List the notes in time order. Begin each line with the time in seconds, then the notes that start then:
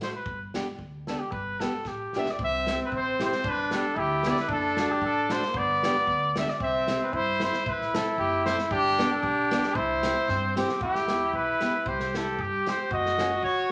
0.01 A3 D4 F#4 C5, snare
0.15 B4
0.26 G1, kick
0.54 B3 D4 G4, snare
0.79 D2, kick
1.07 B3 D4 G4 A4, snare
1.19 G4
1.31 G1 B4, kick
1.60 B3 D4 G4 A4, snare
1.85 A1 G4, kick, snare
2.13 B1 D4 G4, snare
2.17 B3 E5
2.26 snare
2.31 D5
2.39 C2 C4, kick
2.44 E5
2.67 C4 E4 G4, snare, hi-hat pedal
2.85 B4
2.92 A1, kick
2.96 C5
3.19 C4 E4 G4, snare, hi-hat pedal
3.25 C5
3.32 snare
3.44 G1 D4, kick
3.49 B4
3.71 B3 D4 G4, snare, hi-hat pedal
3.77 A4
3.96 D2 E4 G4, kick
4.23 B3 D4 G4, snare, hi-hat pedal
4.28 D5
4.37 B4, snare
4.48 F#1 D4 A4, kick
4.77 A3 D4 F#4, snare, hi-hat pedal
4.92 G4
5.02 A1 A4, kick
5.29 A3 D4 F#4 C5, snare, hi-hat pedal
5.42 snare
5.47 A#3
5.54 G1 B3 D5, kick
5.83 B3 D4 G4, snare, hi-hat pedal
6.07 D2, kick
6.36 B3 D4 G4 E5, snare, hi-hat pedal
6.47 D5, snare
6.60 C2 C4 E5, kick
6.87 C4 E4 G4, snare, hi-hat pedal
7.03 B4
7.13 G2 E4 C5, kick
7.40 C4 E4 G4 C5, snare, hi-hat pedal
7.53 snare
7.66 A1 E4 B4, kick
7.81 snare
7.94 C4 E4 A4, snare, hi-hat pedal
8.18 F#1 G4, kick
8.45 C4 E4 A4 C5, snare, hi-hat pedal
8.58 snare
8.71 G1 D4 G4, kick
8.86 snare
8.98 B3 D4 G4, snare, hi-hat pedal
9.13 A4
9.23 B1 G4, kick
9.51 B3 D4 G4, snare, hi-hat pedal
9.62 snare
9.75 C2 E4 C5, kick
10.03 C4 E4 G4, snare, hi-hat pedal
10.28 G2 C4, kick, snare
10.56 C4 E4 G4, snare, hi-hat pedal
10.69 snare
10.81 E2 E4 G4, kick
10.95 snare
11.08 B3 E4 G4, snare
11.33 B1 B4, kick
11.61 B3 E4 G4, snare
11.86 C2 G4 C5, kick
12.00 snare
12.14 C4 E4 G4 A4, snare
12.38 G2 G4, kick
12.66 C4 E4 G4 C5, snare
12.91 F#1 F#4 D#5, kick
13.06 snare
13.18 A#3 C#4 F#4, snare
13.43 G#1 C#5, kick